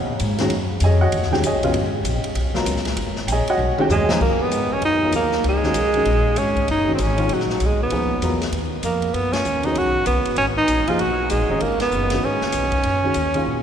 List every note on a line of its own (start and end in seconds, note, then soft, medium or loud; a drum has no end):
0.00 0.19 B2 medium
0.00 0.17 F#5 medium
0.20 0.49 G#2 medium
0.20 hi-hat pedal medium
0.20 ride medium
0.38 0.50 D#3 medium
0.38 0.50 G#3 medium
0.38 0.50 C#4 medium
0.38 0.51 F#4 medium
0.38 snare medium
0.38 ride medium
0.50 0.80 F#2 medium
0.50 ride medium
0.80 1.11 F2 loud
0.80 1.01 G#5 medium
0.80 hi-hat pedal medium
0.80 ride medium
0.85 1.02 G#4 medium
0.85 1.01 C#5 medium
0.85 1.01 D#5 medium
1.01 1.30 F#4 medium
1.01 1.30 C#5 medium
1.01 1.30 D#5 medium
1.01 1.30 F#5 loud
1.12 1.41 D#2 medium
1.12 ride medium
1.23 snare soft
1.31 1.42 D#3 medium
1.31 1.42 G#3 medium
1.31 1.42 C#4 medium
1.31 1.43 F#4 medium
1.31 1.44 G4 medium
1.31 1.43 G5 loud
1.31 snare soft
1.42 1.72 B1 loud
1.42 hi-hat pedal medium
1.42 ride medium
1.46 1.91 G#4 medium
1.46 1.91 C#5 medium
1.46 1.92 D#5 medium
1.46 1.91 G#5 medium
1.63 1.73 C#3 medium
1.63 1.73 F#3 medium
1.63 1.74 B3 medium
1.63 1.74 F4 medium
1.63 ride medium
1.72 2.03 G#1 medium
1.72 ride medium
2.03 2.22 A#1 medium
2.03 hi-hat pedal medium
2.03 ride medium
2.24 ride medium
2.35 2.65 B1 medium
2.35 ride medium
2.54 2.95 F#3 medium
2.54 2.95 B3 medium
2.54 2.95 F4 medium
2.54 2.96 A#4 medium
2.54 snare medium
2.66 2.96 C#2 loud
2.66 hi-hat pedal medium
2.66 ride medium
2.77 snare soft
2.85 snare medium
2.85 ride medium
2.96 3.27 G#1 medium
2.96 ride medium
3.16 snare soft
3.27 3.46 A#1 medium
3.27 3.30 G5 medium
3.27 hi-hat pedal medium
3.27 ride medium
3.32 3.49 G#4 medium
3.32 3.48 C#5 medium
3.32 3.49 D#5 medium
3.32 3.49 G#5 medium
3.47 3.77 F#4 medium
3.47 3.77 C#5 medium
3.47 3.78 D#5 medium
3.47 3.77 F#5 loud
3.47 muted upright bass stroke soft
3.47 ride medium
3.57 3.76 B1 loud
3.57 mid tom medium
3.78 3.89 D#3 medium
3.78 3.89 G#3 medium
3.78 3.89 C#4 medium
3.78 3.90 F#4 loud
3.78 3.91 G4 medium
3.78 3.91 G5 loud
3.78 muted upright bass stroke soft
3.78 mid tom medium
3.89 4.19 D#2 loud
3.89 4.19 G#3 medium
3.89 floor tom medium
3.89 hi-hat pedal medium
3.94 4.09 G#4 medium
3.94 4.16 C#5 medium
3.94 4.16 D#5 medium
3.94 4.15 G#5 medium
4.08 4.19 F3 medium
4.08 4.20 A#3 medium
4.08 4.20 D#4 medium
4.08 4.20 G#4 medium
4.08 snare medium
4.21 4.39 C#2 medium
4.21 4.44 A#3 medium
4.21 kick medium
4.21 crash medium
4.39 4.75 B3 medium
4.39 muted upright bass stroke soft
4.51 4.81 G#2 medium
4.51 hi-hat pedal soft
4.51 ride medium
4.73 4.84 C#4 medium
4.81 5.12 F#2 medium
4.81 5.13 D#4 medium
4.81 ride medium
5.02 5.42 F#3 medium
5.02 5.43 B3 medium
5.02 5.43 F4 medium
5.02 5.43 A#4 medium
5.12 5.43 D#2 medium
5.12 5.43 A#3 medium
5.12 hi-hat pedal medium
5.12 ride medium
5.32 snare soft
5.44 5.74 C#2 medium
5.44 ride medium
5.48 6.39 G#3 medium
5.63 5.74 D#3 medium
5.63 5.74 G#3 medium
5.63 5.75 C#4 medium
5.63 5.75 F#4 medium
5.63 snare soft
5.74 6.05 B1 medium
5.74 hi-hat pedal medium
5.74 ride medium
5.94 6.05 D#3 medium
5.94 6.05 G#3 medium
5.94 6.06 C#4 medium
5.94 6.06 F#4 medium
5.94 ride soft
6.05 6.36 A#1 medium
6.05 ride soft
6.36 6.67 G#1 medium
6.36 6.68 C#4 medium
6.36 hi-hat pedal medium
6.36 ride medium
6.56 kick soft
6.56 ride soft
6.68 6.98 F#1 medium
6.68 6.93 D#4 medium
6.68 ride medium
6.87 6.98 D#3 medium
6.87 6.98 G#3 medium
6.87 6.98 C#4 medium
6.87 6.99 F#4 medium
6.95 7.03 C4 medium
6.95 hi-hat pedal medium
6.95 ride medium
6.99 7.29 G#1 medium
6.99 7.35 C#4 medium
7.17 7.28 D#3 medium
7.17 7.28 G#3 medium
7.17 7.29 C#4 medium
7.17 7.29 F4 medium
7.17 ride soft
7.29 7.60 A#1 medium
7.29 ride medium
7.33 7.67 F#3 medium
7.40 snare soft
7.50 snare soft
7.60 7.90 B1 medium
7.60 hi-hat pedal medium
7.60 ride medium
7.66 7.82 G#3 medium
7.83 8.39 B3 medium
7.90 8.21 C#2 medium
7.90 8.09 F3 medium
7.90 8.09 A#3 medium
7.90 8.09 D#4 medium
7.90 8.09 G#4 medium
7.90 ride medium
8.21 8.51 E2 medium
8.21 8.39 F#3 medium
8.21 8.40 B3 medium
8.21 8.40 F4 medium
8.21 8.40 A#4 medium
8.21 hi-hat pedal soft
8.21 ride medium
8.41 snare soft
8.41 ride soft
8.52 8.82 D#2 medium
8.52 ride medium
8.83 9.13 F2 medium
8.83 9.15 A#3 medium
8.83 hi-hat pedal medium
8.83 ride medium
9.02 ride soft
9.14 9.44 F#2 medium
9.14 9.35 B3 medium
9.14 ride medium
9.33 9.66 C#4 medium
9.33 snare medium
9.33 ride medium
9.45 9.75 D#2 medium
9.45 hi-hat pedal medium
9.63 10.04 D#3 medium
9.63 10.04 G#3 medium
9.63 10.05 C#4 medium
9.63 9.80 D#4 medium
9.63 10.05 F#4 medium
9.63 ride soft
9.75 9.85 C#2 medium
9.75 10.06 F#4 medium
9.75 ride medium
9.85 9.95 B1 medium
9.96 10.06 G#1 medium
10.06 10.18 B1 medium
10.06 10.35 B3 medium
10.06 hi-hat pedal medium
10.06 ride medium
10.16 10.27 G#1 soft
10.25 10.37 F#1 medium
10.25 ride soft
10.36 10.67 G#1 medium
10.36 10.46 C#4 medium
10.36 ride medium
10.57 10.89 D#4 loud
10.68 10.79 A#1 medium
10.68 hi-hat pedal medium
10.68 ride medium
10.79 10.89 G#1 medium
10.87 10.99 F#1 medium
10.87 10.98 F3 medium
10.87 10.98 A#3 medium
10.87 10.99 D#4 medium
10.87 11.02 F4 medium
10.87 10.99 G#4 medium
10.87 ride soft
10.99 11.30 B1 medium
10.99 11.30 F#4 medium
10.99 ride medium
11.30 11.41 A#1 medium
11.30 11.63 G#3 medium
11.30 hi-hat pedal medium
11.30 ride medium
11.41 11.49 G#1 soft
11.49 11.60 F#1 medium
11.49 11.59 D#3 medium
11.49 11.60 G#3 medium
11.49 11.60 C#4 medium
11.49 11.60 D#4 medium
11.60 11.91 G#1 medium
11.60 11.80 A#3 medium
11.60 ride medium
11.80 12.27 B3 medium
11.80 snare soft
11.80 ride medium
11.91 12.22 F#1 medium
11.91 hi-hat pedal medium
12.10 12.51 D#3 medium
12.10 12.52 G#3 soft
12.10 12.52 C#4 medium
12.10 12.52 F#4 medium
12.10 snare soft
12.10 ride medium
12.23 12.41 G#1 medium
12.23 13.63 C#4 medium
12.41 muted upright bass stroke soft
12.41 snare soft
12.52 12.83 B1 medium
12.52 hi-hat pedal medium
12.52 ride medium
12.72 kick soft
12.72 ride soft
12.83 13.14 F#2 medium
12.83 ride medium
13.03 13.13 D#3 medium
13.03 13.14 G#3 medium
13.03 13.14 C#4 medium
13.03 13.15 F#4 medium
13.14 13.45 D#2 medium
13.14 hi-hat pedal medium
13.14 ride medium
13.34 13.63 D#3 medium
13.34 13.63 G#3 medium
13.34 13.63 C#4 medium
13.34 13.63 F4 medium
13.34 ride soft
13.46 13.63 A#2 medium